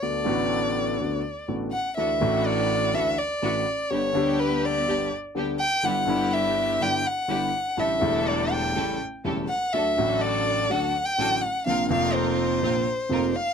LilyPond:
<<
  \new Staff \with { instrumentName = "Violin" } { \time 4/4 \key d \major \tempo 4 = 124 d''2. r8 fis''8 | e''4 d''4 e''8 d''4. | cis''4 b'8 d''4 r4 g''8 | fis''4 e''4 g''8 fis''4. |
e''4 d''8 g''4 r4 fis''8 | e''4 d''4 fis''8. g''8. fis''8 | f''8 f''8 c''2~ c''8 f''8 | }
  \new Staff \with { instrumentName = "String section" } { \time 4/4 \key d \major r1 | <d' e' fis'>8 <d' e' fis'>4. <d' e' fis'>8 r8 <d' e' fis'>8 r8 | <b d' g'>8 <b d' g'>4. <b d' g'>8 r8 <b d' g'>8 r8 | <g d' e' g'>8 <g d' e' g'>4. <g d' e' g'>8 r8 <g d' e' g'>8 r8 |
<d' g' a'>8 <d' g' a'>4. <cis' g' a'>8 r8 <cis' g' a'>8 r8 | <d' fis' a'>8 <d' fis' a'>4. <d' fis' a'>8 r8 <d' fis' a'>8 r8 | <c' f' bes'>8 <c' f' bes'>4. <c' f' bes'>8 r8 <c' f' bes'>8 r8 | }
  \new Staff \with { instrumentName = "Grand piano" } { \clef bass \time 4/4 \key d \major <d, d a b fis'>8 <a,, a, d a b fis'>4. <d, d a b fis'>8 r8 <a,, a, d a b fis'>8 r8 | <d, d e a d' fis'>8 <a,, a, e a d' fis'>4. <d, d e a d' fis'>8 r8 <a,, a, e a d' fis'>8 r8 | <g,, g, d g b g'>8 <d, d g b g'>4. <g,, g, d g b g'>8 r8 <d, d g b g'>8 r8 | <g,, g, d g b e'>8 <g,, g, d g b e'>4. <g,, g, d g b e'>8 r8 <g,, g, d g b e'>8 r8 |
<a,, a, d g a e'>8 <e,, e, d g a e'>4. <a,, a, cis g a e'>8 r8 <e,, e, cis g a e'>8 r8 | <d, d fis a fis'>8 <a,, a, d fis a fis'>4. <d, d fis a fis'>8 r8 <a,, a, d fis a fis'>8 r8 | <bes,, bes, c f bes f'>8 <f,, f, c f bes f'>4. <bes,, bes, c f bes f'>8 r8 <f,, f, c f bes f'>8 r8 | }
>>